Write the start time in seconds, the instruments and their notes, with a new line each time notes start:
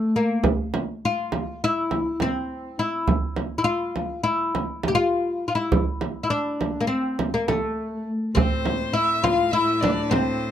Already playing: oud A3
0.16 oud A#3
0.44 frame drum
0.74 frame drum
1.05 oud F4
1.32 frame drum
1.64 oud E4
1.91 frame drum
2.20 oud C4, frame drum
2.79 oud E4
3.08 frame drum
3.36 frame drum
3.58 oud E4
3.64 oud F4
3.96 frame drum
4.24 oud E4
4.55 frame drum
4.83 frame drum
4.88 oud G4
4.95 oud F4
5.48 oud F4
5.55 oud E4
5.72 frame drum
6.01 frame drum
6.23 oud E4
6.30 oud D4
6.61 frame drum
6.81 oud A#3
6.87 oud C4
7.19 frame drum
7.34 oud A#3
7.48 oud A3, frame drum
8.35 cello A2, oud C4, violin C5, frame drum
8.66 frame drum
8.93 oud E4, violin E5
9.24 oud F4, violin F5, frame drum
9.51 oud E4, violin E5
9.80 oud D4, violin D5, frame drum
10.10 oud C4, violin C5, frame drum